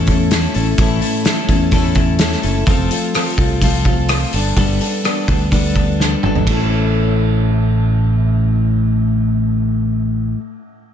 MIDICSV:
0, 0, Header, 1, 5, 480
1, 0, Start_track
1, 0, Tempo, 473934
1, 799, Time_signature, 4, 2, 24, 8
1, 11079, End_track
2, 0, Start_track
2, 0, Title_t, "Steel-string acoustic guitar"
2, 0, Program_c, 0, 25
2, 89, Note_on_c, 0, 69, 55
2, 94, Note_on_c, 0, 64, 50
2, 103, Note_on_c, 0, 61, 50
2, 110, Note_on_c, 0, 57, 46
2, 306, Note_off_c, 0, 57, 0
2, 317, Note_off_c, 0, 61, 0
2, 318, Note_on_c, 0, 57, 50
2, 322, Note_off_c, 0, 64, 0
2, 325, Note_off_c, 0, 69, 0
2, 329, Note_on_c, 0, 61, 63
2, 335, Note_on_c, 0, 64, 63
2, 344, Note_on_c, 0, 69, 68
2, 540, Note_off_c, 0, 69, 0
2, 549, Note_off_c, 0, 64, 0
2, 552, Note_on_c, 0, 69, 57
2, 556, Note_off_c, 0, 61, 0
2, 558, Note_off_c, 0, 57, 0
2, 561, Note_on_c, 0, 64, 50
2, 569, Note_on_c, 0, 61, 43
2, 574, Note_on_c, 0, 57, 46
2, 785, Note_off_c, 0, 57, 0
2, 788, Note_off_c, 0, 61, 0
2, 791, Note_on_c, 0, 45, 88
2, 792, Note_off_c, 0, 64, 0
2, 795, Note_off_c, 0, 69, 0
2, 796, Note_on_c, 0, 52, 96
2, 797, Note_on_c, 0, 57, 85
2, 801, Note_on_c, 0, 61, 92
2, 804, Note_on_c, 0, 64, 95
2, 805, Note_on_c, 0, 69, 96
2, 1011, Note_off_c, 0, 69, 0
2, 1023, Note_off_c, 0, 64, 0
2, 1023, Note_on_c, 0, 69, 59
2, 1028, Note_off_c, 0, 61, 0
2, 1031, Note_off_c, 0, 57, 0
2, 1033, Note_off_c, 0, 45, 0
2, 1035, Note_on_c, 0, 64, 57
2, 1036, Note_off_c, 0, 52, 0
2, 1040, Note_on_c, 0, 61, 47
2, 1043, Note_on_c, 0, 57, 43
2, 1253, Note_off_c, 0, 57, 0
2, 1263, Note_off_c, 0, 61, 0
2, 1265, Note_on_c, 0, 57, 59
2, 1269, Note_off_c, 0, 69, 0
2, 1270, Note_off_c, 0, 64, 0
2, 1275, Note_on_c, 0, 61, 73
2, 1282, Note_on_c, 0, 64, 72
2, 1288, Note_on_c, 0, 69, 72
2, 1492, Note_off_c, 0, 69, 0
2, 1501, Note_off_c, 0, 64, 0
2, 1504, Note_on_c, 0, 69, 61
2, 1507, Note_off_c, 0, 61, 0
2, 1510, Note_off_c, 0, 57, 0
2, 1514, Note_on_c, 0, 64, 54
2, 1519, Note_on_c, 0, 61, 58
2, 1521, Note_on_c, 0, 57, 47
2, 1734, Note_off_c, 0, 57, 0
2, 1735, Note_off_c, 0, 61, 0
2, 1739, Note_off_c, 0, 64, 0
2, 1742, Note_off_c, 0, 69, 0
2, 1742, Note_on_c, 0, 45, 74
2, 1746, Note_on_c, 0, 52, 80
2, 1746, Note_on_c, 0, 57, 70
2, 1748, Note_on_c, 0, 61, 81
2, 1751, Note_on_c, 0, 64, 77
2, 1754, Note_on_c, 0, 69, 90
2, 1962, Note_off_c, 0, 69, 0
2, 1968, Note_off_c, 0, 64, 0
2, 1975, Note_on_c, 0, 69, 60
2, 1979, Note_off_c, 0, 61, 0
2, 1980, Note_on_c, 0, 64, 58
2, 1985, Note_off_c, 0, 57, 0
2, 1987, Note_off_c, 0, 45, 0
2, 1989, Note_off_c, 0, 52, 0
2, 1991, Note_on_c, 0, 61, 51
2, 1997, Note_on_c, 0, 57, 46
2, 2205, Note_off_c, 0, 57, 0
2, 2213, Note_off_c, 0, 61, 0
2, 2218, Note_off_c, 0, 64, 0
2, 2218, Note_on_c, 0, 57, 55
2, 2223, Note_off_c, 0, 69, 0
2, 2225, Note_on_c, 0, 61, 58
2, 2230, Note_on_c, 0, 64, 56
2, 2239, Note_on_c, 0, 69, 67
2, 2440, Note_off_c, 0, 69, 0
2, 2452, Note_on_c, 0, 69, 63
2, 2453, Note_off_c, 0, 64, 0
2, 2457, Note_off_c, 0, 61, 0
2, 2464, Note_off_c, 0, 57, 0
2, 2465, Note_on_c, 0, 64, 46
2, 2469, Note_on_c, 0, 61, 46
2, 2481, Note_on_c, 0, 57, 46
2, 2688, Note_off_c, 0, 57, 0
2, 2692, Note_on_c, 0, 53, 82
2, 2695, Note_off_c, 0, 61, 0
2, 2695, Note_off_c, 0, 69, 0
2, 2699, Note_on_c, 0, 60, 97
2, 2701, Note_off_c, 0, 64, 0
2, 2705, Note_on_c, 0, 65, 88
2, 2707, Note_on_c, 0, 69, 87
2, 2923, Note_off_c, 0, 69, 0
2, 2931, Note_off_c, 0, 65, 0
2, 2935, Note_on_c, 0, 69, 55
2, 2941, Note_off_c, 0, 53, 0
2, 2942, Note_off_c, 0, 60, 0
2, 2943, Note_on_c, 0, 65, 52
2, 2954, Note_on_c, 0, 60, 47
2, 3171, Note_off_c, 0, 60, 0
2, 3177, Note_on_c, 0, 53, 60
2, 3181, Note_off_c, 0, 65, 0
2, 3182, Note_off_c, 0, 69, 0
2, 3183, Note_on_c, 0, 60, 56
2, 3193, Note_on_c, 0, 65, 61
2, 3201, Note_on_c, 0, 69, 64
2, 3410, Note_off_c, 0, 69, 0
2, 3422, Note_on_c, 0, 69, 54
2, 3423, Note_off_c, 0, 65, 0
2, 3424, Note_off_c, 0, 53, 0
2, 3427, Note_off_c, 0, 60, 0
2, 3435, Note_on_c, 0, 65, 49
2, 3445, Note_on_c, 0, 60, 41
2, 3656, Note_off_c, 0, 60, 0
2, 3663, Note_off_c, 0, 65, 0
2, 3663, Note_on_c, 0, 53, 83
2, 3666, Note_off_c, 0, 69, 0
2, 3668, Note_on_c, 0, 60, 82
2, 3675, Note_on_c, 0, 65, 85
2, 3678, Note_on_c, 0, 69, 75
2, 3893, Note_off_c, 0, 69, 0
2, 3903, Note_off_c, 0, 65, 0
2, 3905, Note_on_c, 0, 69, 53
2, 3907, Note_off_c, 0, 53, 0
2, 3909, Note_off_c, 0, 60, 0
2, 3915, Note_on_c, 0, 65, 54
2, 3922, Note_on_c, 0, 60, 43
2, 4140, Note_off_c, 0, 60, 0
2, 4141, Note_on_c, 0, 53, 49
2, 4146, Note_off_c, 0, 65, 0
2, 4148, Note_off_c, 0, 69, 0
2, 4152, Note_on_c, 0, 60, 66
2, 4158, Note_on_c, 0, 65, 56
2, 4164, Note_on_c, 0, 69, 61
2, 4382, Note_off_c, 0, 69, 0
2, 4386, Note_off_c, 0, 53, 0
2, 4391, Note_off_c, 0, 60, 0
2, 4394, Note_off_c, 0, 65, 0
2, 4394, Note_on_c, 0, 69, 52
2, 4406, Note_on_c, 0, 62, 56
2, 4416, Note_on_c, 0, 59, 45
2, 4630, Note_off_c, 0, 59, 0
2, 4632, Note_off_c, 0, 69, 0
2, 4636, Note_on_c, 0, 55, 89
2, 4638, Note_off_c, 0, 62, 0
2, 4642, Note_on_c, 0, 59, 75
2, 4649, Note_on_c, 0, 62, 82
2, 4650, Note_on_c, 0, 69, 82
2, 4859, Note_off_c, 0, 69, 0
2, 4871, Note_on_c, 0, 69, 50
2, 4874, Note_off_c, 0, 55, 0
2, 4875, Note_off_c, 0, 62, 0
2, 4877, Note_off_c, 0, 59, 0
2, 4887, Note_on_c, 0, 62, 45
2, 4893, Note_on_c, 0, 59, 42
2, 5111, Note_off_c, 0, 69, 0
2, 5114, Note_off_c, 0, 59, 0
2, 5117, Note_on_c, 0, 55, 53
2, 5119, Note_off_c, 0, 62, 0
2, 5126, Note_on_c, 0, 59, 62
2, 5135, Note_on_c, 0, 62, 55
2, 5141, Note_on_c, 0, 69, 61
2, 5343, Note_off_c, 0, 69, 0
2, 5353, Note_off_c, 0, 62, 0
2, 5355, Note_off_c, 0, 55, 0
2, 5355, Note_on_c, 0, 69, 50
2, 5359, Note_off_c, 0, 59, 0
2, 5365, Note_on_c, 0, 62, 50
2, 5373, Note_on_c, 0, 59, 39
2, 5592, Note_off_c, 0, 59, 0
2, 5594, Note_off_c, 0, 69, 0
2, 5596, Note_off_c, 0, 62, 0
2, 5603, Note_on_c, 0, 55, 76
2, 5604, Note_on_c, 0, 59, 68
2, 5608, Note_on_c, 0, 62, 72
2, 5610, Note_on_c, 0, 69, 88
2, 5826, Note_off_c, 0, 69, 0
2, 5833, Note_off_c, 0, 62, 0
2, 5838, Note_off_c, 0, 55, 0
2, 5838, Note_off_c, 0, 59, 0
2, 5838, Note_on_c, 0, 69, 53
2, 5845, Note_on_c, 0, 62, 49
2, 5857, Note_on_c, 0, 59, 46
2, 6074, Note_off_c, 0, 59, 0
2, 6076, Note_off_c, 0, 69, 0
2, 6078, Note_on_c, 0, 55, 52
2, 6079, Note_off_c, 0, 62, 0
2, 6087, Note_on_c, 0, 59, 47
2, 6091, Note_on_c, 0, 62, 60
2, 6099, Note_on_c, 0, 69, 63
2, 6312, Note_off_c, 0, 69, 0
2, 6316, Note_off_c, 0, 55, 0
2, 6320, Note_off_c, 0, 59, 0
2, 6322, Note_off_c, 0, 62, 0
2, 6325, Note_on_c, 0, 69, 53
2, 6336, Note_on_c, 0, 62, 50
2, 6345, Note_on_c, 0, 59, 40
2, 6556, Note_on_c, 0, 45, 61
2, 6559, Note_off_c, 0, 69, 0
2, 6565, Note_off_c, 0, 62, 0
2, 6566, Note_on_c, 0, 52, 68
2, 6570, Note_off_c, 0, 59, 0
2, 6582, Note_on_c, 0, 57, 75
2, 6591, Note_on_c, 0, 61, 68
2, 6602, Note_on_c, 0, 64, 78
2, 6614, Note_on_c, 0, 69, 88
2, 10510, Note_off_c, 0, 45, 0
2, 10521, Note_off_c, 0, 52, 0
2, 10537, Note_off_c, 0, 57, 0
2, 10545, Note_off_c, 0, 61, 0
2, 10557, Note_off_c, 0, 64, 0
2, 10568, Note_off_c, 0, 69, 0
2, 11079, End_track
3, 0, Start_track
3, 0, Title_t, "Clean electric guitar"
3, 0, Program_c, 1, 27
3, 0, Note_on_c, 1, 45, 85
3, 0, Note_on_c, 1, 57, 104
3, 0, Note_on_c, 1, 61, 87
3, 108, Note_off_c, 1, 61, 0
3, 315, Note_off_c, 1, 57, 0
3, 321, Note_off_c, 1, 45, 0
3, 2718, Note_on_c, 1, 57, 86
3, 3182, Note_off_c, 1, 57, 0
3, 3186, Note_on_c, 1, 57, 63
3, 3673, Note_off_c, 1, 57, 0
3, 3677, Note_on_c, 1, 57, 88
3, 4130, Note_off_c, 1, 57, 0
3, 4134, Note_on_c, 1, 57, 57
3, 4409, Note_off_c, 1, 57, 0
3, 4413, Note_on_c, 1, 55, 56
3, 4608, Note_off_c, 1, 55, 0
3, 11079, End_track
4, 0, Start_track
4, 0, Title_t, "Fingered electric bass"
4, 0, Program_c, 2, 33
4, 0, Note_on_c, 2, 40, 93
4, 461, Note_off_c, 2, 40, 0
4, 564, Note_on_c, 2, 33, 82
4, 777, Note_off_c, 2, 33, 0
4, 789, Note_on_c, 2, 33, 91
4, 1008, Note_off_c, 2, 33, 0
4, 1509, Note_on_c, 2, 40, 96
4, 2371, Note_off_c, 2, 40, 0
4, 2469, Note_on_c, 2, 30, 85
4, 2685, Note_off_c, 2, 30, 0
4, 2706, Note_on_c, 2, 29, 94
4, 2923, Note_off_c, 2, 29, 0
4, 3423, Note_on_c, 2, 36, 85
4, 4288, Note_off_c, 2, 36, 0
4, 4391, Note_on_c, 2, 31, 77
4, 4607, Note_off_c, 2, 31, 0
4, 4627, Note_on_c, 2, 31, 86
4, 4844, Note_off_c, 2, 31, 0
4, 5354, Note_on_c, 2, 38, 84
4, 6217, Note_off_c, 2, 38, 0
4, 6325, Note_on_c, 2, 31, 75
4, 6536, Note_off_c, 2, 31, 0
4, 6549, Note_on_c, 2, 33, 90
4, 10463, Note_off_c, 2, 33, 0
4, 11079, End_track
5, 0, Start_track
5, 0, Title_t, "Drums"
5, 69, Note_on_c, 9, 46, 46
5, 77, Note_on_c, 9, 36, 62
5, 171, Note_off_c, 9, 46, 0
5, 178, Note_off_c, 9, 36, 0
5, 313, Note_on_c, 9, 46, 69
5, 320, Note_on_c, 9, 38, 95
5, 415, Note_off_c, 9, 46, 0
5, 422, Note_off_c, 9, 38, 0
5, 551, Note_on_c, 9, 46, 44
5, 652, Note_off_c, 9, 46, 0
5, 789, Note_on_c, 9, 46, 60
5, 792, Note_on_c, 9, 36, 102
5, 890, Note_off_c, 9, 46, 0
5, 894, Note_off_c, 9, 36, 0
5, 1030, Note_on_c, 9, 46, 52
5, 1131, Note_off_c, 9, 46, 0
5, 1266, Note_on_c, 9, 46, 56
5, 1273, Note_on_c, 9, 38, 101
5, 1367, Note_off_c, 9, 46, 0
5, 1374, Note_off_c, 9, 38, 0
5, 1505, Note_on_c, 9, 46, 45
5, 1506, Note_on_c, 9, 36, 80
5, 1606, Note_off_c, 9, 46, 0
5, 1607, Note_off_c, 9, 36, 0
5, 1736, Note_on_c, 9, 46, 54
5, 1742, Note_on_c, 9, 36, 74
5, 1838, Note_off_c, 9, 46, 0
5, 1843, Note_off_c, 9, 36, 0
5, 1974, Note_on_c, 9, 46, 37
5, 1981, Note_on_c, 9, 36, 67
5, 2075, Note_off_c, 9, 46, 0
5, 2082, Note_off_c, 9, 36, 0
5, 2216, Note_on_c, 9, 46, 62
5, 2223, Note_on_c, 9, 38, 102
5, 2317, Note_off_c, 9, 46, 0
5, 2324, Note_off_c, 9, 38, 0
5, 2351, Note_on_c, 9, 38, 29
5, 2453, Note_off_c, 9, 38, 0
5, 2464, Note_on_c, 9, 46, 46
5, 2565, Note_off_c, 9, 46, 0
5, 2702, Note_on_c, 9, 36, 100
5, 2705, Note_on_c, 9, 46, 59
5, 2803, Note_off_c, 9, 36, 0
5, 2806, Note_off_c, 9, 46, 0
5, 2946, Note_on_c, 9, 46, 57
5, 3047, Note_off_c, 9, 46, 0
5, 3186, Note_on_c, 9, 46, 59
5, 3193, Note_on_c, 9, 37, 86
5, 3287, Note_off_c, 9, 46, 0
5, 3294, Note_off_c, 9, 37, 0
5, 3422, Note_on_c, 9, 36, 77
5, 3426, Note_on_c, 9, 46, 47
5, 3523, Note_off_c, 9, 36, 0
5, 3527, Note_off_c, 9, 46, 0
5, 3662, Note_on_c, 9, 36, 67
5, 3663, Note_on_c, 9, 46, 65
5, 3763, Note_off_c, 9, 36, 0
5, 3764, Note_off_c, 9, 46, 0
5, 3901, Note_on_c, 9, 36, 71
5, 3901, Note_on_c, 9, 46, 35
5, 4002, Note_off_c, 9, 36, 0
5, 4003, Note_off_c, 9, 46, 0
5, 4138, Note_on_c, 9, 46, 61
5, 4145, Note_on_c, 9, 37, 101
5, 4240, Note_off_c, 9, 46, 0
5, 4247, Note_off_c, 9, 37, 0
5, 4382, Note_on_c, 9, 46, 44
5, 4484, Note_off_c, 9, 46, 0
5, 4624, Note_on_c, 9, 36, 87
5, 4624, Note_on_c, 9, 46, 57
5, 4725, Note_off_c, 9, 36, 0
5, 4726, Note_off_c, 9, 46, 0
5, 4870, Note_on_c, 9, 46, 46
5, 4971, Note_off_c, 9, 46, 0
5, 5111, Note_on_c, 9, 46, 55
5, 5118, Note_on_c, 9, 37, 91
5, 5213, Note_off_c, 9, 46, 0
5, 5220, Note_off_c, 9, 37, 0
5, 5348, Note_on_c, 9, 36, 76
5, 5349, Note_on_c, 9, 46, 42
5, 5450, Note_off_c, 9, 36, 0
5, 5450, Note_off_c, 9, 46, 0
5, 5590, Note_on_c, 9, 36, 63
5, 5594, Note_on_c, 9, 46, 55
5, 5691, Note_off_c, 9, 36, 0
5, 5695, Note_off_c, 9, 46, 0
5, 5829, Note_on_c, 9, 36, 62
5, 5829, Note_on_c, 9, 46, 34
5, 5930, Note_off_c, 9, 46, 0
5, 5931, Note_off_c, 9, 36, 0
5, 6080, Note_on_c, 9, 38, 49
5, 6181, Note_off_c, 9, 38, 0
5, 6311, Note_on_c, 9, 45, 74
5, 6413, Note_off_c, 9, 45, 0
5, 6435, Note_on_c, 9, 43, 68
5, 6537, Note_off_c, 9, 43, 0
5, 6550, Note_on_c, 9, 36, 60
5, 6555, Note_on_c, 9, 51, 73
5, 6652, Note_off_c, 9, 36, 0
5, 6656, Note_off_c, 9, 51, 0
5, 11079, End_track
0, 0, End_of_file